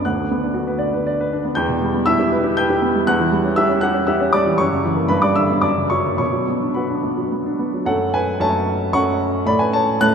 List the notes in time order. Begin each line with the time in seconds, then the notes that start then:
0.05 D2 F#5 F#6
0.18 D3
0.31 B3
0.42 D4
0.54 F#4
0.67 B4
0.79 D5
0.94 B4
1.07 D5
1.21 B4
1.32 D4
1.45 B3
1.55 E2 G5 G6
1.69 B2
1.82 G3
1.94 B3
2.06 E4 E5 E6
2.20 G4
2.32 B4
2.44 G4
2.57 B4 G5 G6
2.70 G4
2.82 B3
2.95 G3
3.07 E2 F#5 F#6
3.20 E3
3.31 G3
3.44 C#4
3.56 G4 E5 E6
3.69 C#4
3.81 G4 F#5 F#6
3.94 C#4
4.07 G4 E5 E6
4.20 C#4
4.33 G3 D5 D6
4.46 E3
4.58 F#2 C#5 C#6
4.72 C#3
4.85 E3
4.96 A#3
5.08 G2 B4 B5
5.22 G3 D5 D6
5.36 D3 E5 E6
5.50 B3
5.62 F#2 D5 D6
5.77 C#3
5.90 F#3 C#5 C#6
6.06 A#3
6.18 B2 C#5 C#6
6.33 F#3
6.48 B3
6.62 D4
6.74 F#4 B4 B5
6.90 D4
7.04 B3
7.17 F#3
7.32 B3
7.46 D4
7.59 B3
7.74 F#3
7.86 F#2 A3 C#4 A4 F#5
8.14 B4 G#5
8.40 F#2 A3 C#4 C#5 A5
8.93 F#2 A3 C#4 F#5 C#6
9.46 A2 A3 C#4 D5 B5
9.59 B4 G#5
9.73 C#5 A5
10.01 A2 A3 C#4 A5 F#6